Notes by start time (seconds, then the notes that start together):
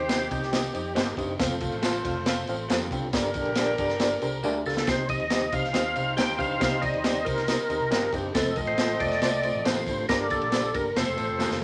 Already playing: D#2 C3 D#3 C4 G4 C5
0.09 C4 D#4 G4 C5 D#5, snare, ride, tambourine
0.30 C2 C4 D#4 G4 C5 D#5, kick, ride, tambourine
0.43 snare
0.52 C4 D#4 G4 C5 D#5, snare, ride, tambourine
0.73 F2 C4 D#4 G4 C5 D#5, ride, tambourine
0.95 G1 D#2 C4 D#4 G4 C5 D#5, snare, ride, tambourine
1.17 F#1 G2 C4 D#4 G4 C5 D#5, kick, ride, tambourine
1.39 F1 F2 A3 C4 F4 A4 C5 F5, kick, snare, ride, tambourine
1.60 C4 F4 A4 C5 F5, kick, ride, tambourine
1.72 A1, ride
1.82 A3 C4 F4 A4 C5 F5, snare, ride, tambourine
2.04 F1 C4 F4 A4 C5 F5, kick, ride, tambourine
2.26 C4 F4 A4 C5 F5, snare, ride, tambourine
2.47 A1 C4 F4 A4 C5 F5, ride, tambourine
2.69 D#2 F2 A3 C4 F4 A4 C5 F5, snare, ride, tambourine
2.91 C2 G2 C4 F4 A4 C5 G5, kick, ride, tambourine
3.13 G1 G2 G3 D4 G4 A4 A#4 D5, kick, snare, ride, tambourine
3.34 D4 G4 A4 A#4 D5, kick, ride, tambourine
3.45 A#1, ride
3.55 G3 A#3 D4 G4 A4 A#4 D5, snare, ride, tambourine
3.78 G1 D4 G4 A4 A#4 D5, kick, ride, tambourine
3.90 snare, ride
3.99 D4 G4 A4 A#4 D5, snare, ride, tambourine
4.21 C2 D4 G4 A4 A#4 C5, ride, tambourine
4.43 D2 G3 A#3 D4 G4 A4 A#4 D5, tambourine
4.65 C#2 G2 D4 G4 A4 A#4 F5, tambourine
4.77 snare
4.87 C2 C3 C4 D#4 G4 C5 D#5, kick, snare, ride, tambourine
5.09 C4 D#4 G4 C5 D#5, kick, ride, tambourine
5.19 D#2, ride
5.30 G3 C4 D#4 G4 C5 D#5, snare, ride, tambourine
5.52 C2 C4 D#4 G4 C5 D#5 F5, kick, ride, tambourine
5.64 snare
5.73 D#2 G3 C4 D#4 G4 C5 D#5, snare, ride, tambourine
5.95 C2 C4 D#4 G4 C5 F5, ride, tambourine
6.16 D2 D#2 G3 C4 D#4 G4 C5 D#5 G5, snare, ride, tambourine
6.38 C#2 G2 C4 D#4 G4 C5 F5, kick, ride, tambourine
6.60 C2 C3 C4 D#4 G4 C5 D#5, kick, snare, ride, tambourine
6.82 C4 D#4 G4 C5 D5 D#5, kick, ride, tambourine
6.93 D#2, ride
7.04 G3 C4 D#4 G4 C5 D5, snare, ride, tambourine
7.25 C2 C4 D#4 G4 A#4 C5 D#5, kick, ride, tambourine
7.38 snare, ride
7.48 C4 D#4 G4 C5 D#5, snare, ride, tambourine
7.69 D#2 C4 D#4 G4 C5 D#5, ride, tambourine
7.80 C2
7.91 G1 D#2 G3 C4 D#4 G4 C5 D#5, snare, ride, tambourine
8.12 F#1 G2 C4 D#4 G4 C5 D#5, kick, ride, tambourine
8.35 F1 F2 A3 C4 F4 A4 C5 D#5, kick, snare, ride, tambourine
8.56 A3 C4 F4 A4 A#4 D#5, kick, ride, tambourine
8.67 A1 C5, ride
8.78 A3 C4 F4 A4 C5, snare, ride, tambourine
8.99 F1 A3 C4 F4 A4 C5 D5, kick, ride, tambourine
9.11 snare, ride
9.22 C2 A3 C4 F4 A4 C5, snare, ride, tambourine
9.43 A3 C4 F4 A4 C5, ride, tambourine
9.55 A1
9.65 A1 D#2 A3 C4 F4 A4 C5, snare, ride, tambourine
9.86 G#1 G2 A3 C4 F4 A4 C5, kick, ride, tambourine
10.09 G1 G2 A#3 D4 G4 A4 A#4 D5, kick, snare, ride, tambourine
10.30 A#3 D4 G4 A4 A#4, kick, ride, tambourine
10.41 A#1, ride
10.52 G3 A#3 D4 G4 A4 C5, snare, ride, tambourine
10.73 G1 A#3 D4 G4 A4 A#4, kick, ride, tambourine
10.96 F1 F3 A3 C4 F4 A4 C5, snare, ride, tambourine
11.17 A1 A3 C4 F4 A4 C5, ride, tambourine
11.29 F1
11.39 D#2 A3 C4 F4 A4 C5, snare, tambourine
11.50 F1, snare